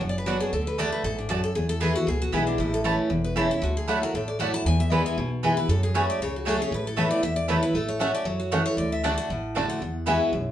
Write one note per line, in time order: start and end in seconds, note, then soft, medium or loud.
0.01 0.38 F#1 medium
0.01 0.50 F#2 medium
0.01 0.10 F#5 medium
0.09 0.18 D5 medium
0.18 0.27 B4 medium
0.26 0.51 F#3 loud
0.26 0.36 B3 medium
0.26 0.52 B3 medium
0.26 0.52 D4 loud
0.26 0.40 F#4 medium
0.26 0.36 F#4 medium
0.26 0.52 F#4 medium
0.26 0.37 D5 medium
0.26 0.37 F#5 loud
0.40 0.52 G#4 medium
0.53 0.90 D2 loud
0.53 0.77 D3 medium
0.53 0.66 A4 medium
0.67 0.79 B4 medium
0.78 1.03 D3 medium
0.78 0.88 A3 medium
0.78 1.03 A3 medium
0.78 1.04 D4 medium
0.78 0.88 F#4 medium
0.78 1.04 F#4 medium
0.78 0.88 D5 medium
0.78 0.92 D5 medium
0.78 0.89 A5 loud
0.92 1.04 B4 medium
1.03 1.41 A1 medium
1.03 1.29 G#2 medium
1.03 1.18 A4 medium
1.19 1.30 D4 medium
1.29 1.54 F#2 medium
1.29 1.39 A3 medium
1.29 1.43 F#4 medium
1.29 1.40 F#4 medium
1.29 1.40 D5 loud
1.29 1.40 A5 medium
1.44 1.55 A4 medium
1.55 2.05 E2 medium
1.55 1.93 E2 loud
1.55 1.69 G#4 medium
1.69 1.80 A4 loud
1.80 1.95 E3 medium
1.80 1.95 G#3 medium
1.80 1.91 B3 medium
1.80 1.95 B3 medium
1.80 1.91 E4 medium
1.80 1.94 E4 medium
1.80 1.94 G#4 medium
1.80 1.91 B4 loud
1.80 1.91 G#5 loud
1.95 2.08 B3 soft
1.95 2.07 E4 medium
1.95 2.07 F#4 medium
2.07 2.29 C#2 medium
2.07 2.56 B2 medium
2.07 2.21 G#4 loud
2.22 2.34 F#4 medium
2.32 2.55 B1 medium
2.32 2.57 E3 medium
2.32 2.58 G#3 medium
2.32 2.42 B3 medium
2.32 2.58 B3 medium
2.32 2.43 E4 medium
2.32 2.47 E4 medium
2.32 2.58 E4 medium
2.32 2.43 B4 medium
2.32 2.43 G#5 loud
2.47 2.59 D4 medium
2.58 2.96 A1 loud
2.58 3.08 A2 medium
2.58 2.73 E4 medium
2.74 2.81 A4 loud
2.84 3.09 E3 medium
2.84 2.94 A3 loud
2.84 3.09 A3 medium
2.84 3.10 C#4 medium
2.84 2.94 E4 medium
2.84 3.10 E4 loud
2.84 2.94 C#5 loud
2.84 2.95 A5 loud
3.10 3.48 E1 medium
3.10 3.59 E2 medium
3.24 3.36 B4 medium
3.36 3.49 E3 medium
3.36 3.46 A3 medium
3.36 3.49 A3 medium
3.36 3.50 C#4 loud
3.36 3.46 E4 medium
3.36 3.48 E4 loud
3.36 3.50 G#4 medium
3.36 3.46 C#5 medium
3.36 3.46 A5 loud
3.50 3.62 C#4 soft
3.50 3.61 E4 medium
3.50 3.62 E4 medium
3.62 3.99 D2 loud
3.62 4.11 D3 medium
3.62 3.76 F#4 medium
3.77 3.88 G#4 medium
3.88 4.01 F#3 medium
3.88 3.97 A3 medium
3.88 4.01 A3 loud
3.88 3.98 E4 medium
3.88 4.02 E4 medium
3.88 4.00 F#4 medium
3.88 4.02 A4 medium
3.88 3.98 D5 medium
3.88 3.98 F#5 loud
4.02 4.14 E4 soft
4.02 4.13 F#4 medium
4.02 4.14 A#4 medium
4.14 4.51 A1 medium
4.14 4.63 A2 medium
4.14 4.28 A4 medium
4.28 4.39 D5 medium
4.39 4.52 F#3 medium
4.39 4.53 A3 medium
4.39 4.49 A3 medium
4.39 4.49 E4 medium
4.39 4.53 E4 loud
4.39 4.53 F#4 loud
4.39 4.50 D5 medium
4.39 4.53 F#5 medium
4.39 4.50 F#5 medium
4.54 4.66 E4 soft
4.54 4.65 F#4 medium
4.54 4.65 A5 loud
4.65 5.03 E2 loud
4.65 5.15 E2 medium
4.65 4.79 G#5 loud
4.80 4.92 E5 loud
4.90 5.15 E3 medium
4.90 5.16 G#3 loud
4.90 5.16 B3 medium
4.90 5.01 B3 medium
4.90 5.01 E4 medium
4.90 5.16 E4 loud
4.90 5.01 B4 loud
4.90 5.05 D5 medium
4.90 5.01 G#5 medium
5.06 5.29 G#5 loud
5.17 5.54 B1 medium
5.17 5.66 B2 loud
5.43 5.56 E3 medium
5.43 5.57 G#3 medium
5.43 5.52 B3 medium
5.43 5.57 B3 medium
5.43 5.53 E4 medium
5.43 5.56 E4 loud
5.43 5.53 B4 loud
5.43 5.53 G#5 medium
5.57 5.69 B3 soft
5.57 5.68 E4 medium
5.57 5.68 B4 medium
5.68 6.06 F#2 loud
5.68 6.18 F#2 medium
5.68 5.82 A4 medium
5.83 5.95 G#4 medium
5.94 6.19 F#3 medium
5.94 6.04 A3 medium
5.94 6.19 A3 medium
5.94 6.19 C#4 medium
5.94 6.04 F#4 medium
5.94 6.20 G#4 loud
5.94 6.08 B4 medium
5.94 6.04 C#5 medium
5.94 6.05 G#5 loud
6.10 6.21 D5 loud
6.20 6.57 C#2 medium
6.20 6.70 C#3 medium
6.20 6.34 C#5 medium
6.36 6.48 F#4 medium
6.45 6.59 F#3 medium
6.45 6.55 A3 medium
6.45 6.60 A3 medium
6.45 6.60 C#4 loud
6.45 6.55 F#4 medium
6.45 6.59 G#4 medium
6.45 6.60 A4 medium
6.45 6.55 C#5 medium
6.45 6.56 G#5 medium
6.60 6.72 C#4 soft
6.60 6.72 G#4 medium
6.60 6.72 C#5 loud
6.71 7.09 A1 loud
6.71 7.21 A2 medium
6.71 6.86 B4 medium
6.87 6.98 A4 medium
6.96 7.22 E3 medium
6.96 7.07 A3 medium
6.96 7.22 A3 loud
6.96 7.04 A3 medium
6.96 7.22 B3 medium
6.96 7.07 E4 medium
6.96 7.00 E4 medium
6.96 7.23 E4 loud
6.96 7.07 B4 medium
6.96 7.10 C#5 medium
6.96 7.07 A5 loud
7.11 7.23 D5 medium
7.22 7.60 E2 medium
7.22 7.72 E2 medium
7.22 7.36 E5 medium
7.36 7.48 D5 medium
7.48 7.62 E3 medium
7.48 7.58 A3 medium
7.48 7.55 A3 medium
7.48 7.62 A3 medium
7.48 7.63 B3 medium
7.48 7.58 E4 medium
7.48 7.62 E4 medium
7.48 7.52 E4 medium
7.48 7.59 B4 medium
7.48 7.62 C#5 medium
7.48 7.59 A5 medium
7.63 7.75 B3 soft
7.63 7.74 E4 medium
7.63 7.75 B4 medium
7.73 8.11 A1 medium
7.73 7.99 A3 medium
7.73 7.88 A4 medium
7.88 8.00 C#5 medium
7.99 8.10 A3 medium
7.99 8.25 A3 medium
7.99 8.07 A3 medium
7.99 8.25 C#4 medium
7.99 8.07 C#4 medium
7.99 8.10 F#4 medium
7.99 8.25 F#4 medium
7.99 8.07 F#4 medium
7.99 8.10 C#5 medium
7.99 8.14 E5 loud
7.99 8.10 F#5 medium
8.15 8.26 D5 medium
8.25 8.63 F#2 medium
8.25 8.50 F#3 medium
8.25 8.40 C#5 medium
8.40 8.52 F#4 medium
8.52 8.77 E3 medium
8.52 8.61 A3 medium
8.52 8.59 A3 medium
8.52 8.59 C#4 medium
8.52 8.62 F#4 medium
8.52 8.59 F#4 medium
8.52 8.65 A4 medium
8.52 8.62 C#5 medium
8.52 8.62 F#5 medium
8.66 8.78 C#5 loud
8.77 9.15 D2 loud
8.77 9.03 D3 medium
8.77 8.91 D5 medium
8.92 9.04 E5 medium
9.03 9.28 D3 medium
9.03 9.13 A3 medium
9.03 9.29 A3 medium
9.03 9.10 A3 medium
9.03 9.29 D4 medium
9.03 9.11 D4 medium
9.03 9.13 F#4 medium
9.03 9.29 F#4 loud
9.03 9.11 F#4 medium
9.03 9.13 D5 loud
9.03 9.16 F#5 medium
9.03 9.14 A5 medium
9.18 9.53 F#5 loud
9.29 9.67 A1 medium
9.29 9.79 A2 loud
9.55 9.80 D3 medium
9.55 9.65 A3 medium
9.55 9.62 A3 medium
9.55 9.81 A3 medium
9.55 9.62 D4 medium
9.55 9.81 D4 loud
9.55 9.65 F#4 medium
9.55 9.62 F#4 medium
9.55 9.81 F#4 loud
9.55 9.65 D5 medium
9.55 9.65 A5 loud
9.70 10.05 F#5 loud
9.81 10.18 E2 loud
9.81 10.31 E2 medium
10.06 10.32 E3 medium
10.06 10.32 G#3 medium
10.06 10.16 B3 medium
10.06 10.13 B3 medium
10.06 10.32 B3 medium
10.06 10.10 E4 medium
10.06 10.17 F#4 loud
10.06 10.33 F#4 loud
10.06 10.44 E5 medium
10.06 10.17 E5 medium
10.06 10.17 G#5 loud
10.32 10.52 B1 medium
10.32 10.52 F#2 medium